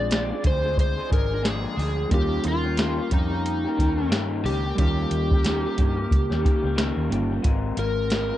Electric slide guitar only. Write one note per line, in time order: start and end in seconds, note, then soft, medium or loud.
0.00 0.47 D5 loud
0.47 0.79 C5 medium
0.80 1.13 C5 loud
1.13 1.47 A#4 medium
1.47 2.08 G#4 medium
2.14 2.47 G4 medium
2.48 3.09 F4 medium
3.13 4.08 D#4 medium
4.45 4.78 G4 loud
4.79 6.75 G4 loud
7.79 8.38 A#4 medium